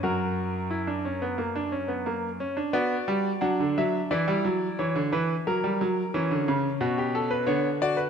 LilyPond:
<<
  \new Staff \with { instrumentName = "Grand piano" } { \time 4/4 \key b \minor \tempo 4 = 89 << { ais'2.~ ais'8 r8 | d''4 fis''8 e''8 d''4 cis''8 b'8 | ais'2 fis'16 g'16 a'16 b'16 cis''8 d''16 b'16 | } \\ { fis'4 e'16 d'16 cis'16 b16 ais16 d'16 cis'16 b16 ais8 cis'16 d'16 | fis'4 d'4 e'2~ | e'4 cis'2 b8 fis'8 | } >> }
  \new Staff \with { instrumentName = "Grand piano" } { \clef bass \time 4/4 \key b \minor fis,2.~ fis,8 r8 | b8 g8 fis16 d16 fis8 e16 g16 fis8 e16 d16 e8 | fis16 g16 fis8 e16 d16 cis8 b,4 d4 | }
>>